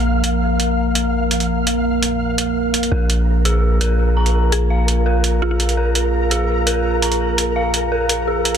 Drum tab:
HH |--x---x---x---xx|--x---x---x---xx|--x---x---x----x|--x---x---x---xx|

HH |--x---x---x---xx|--x---x---x---x-|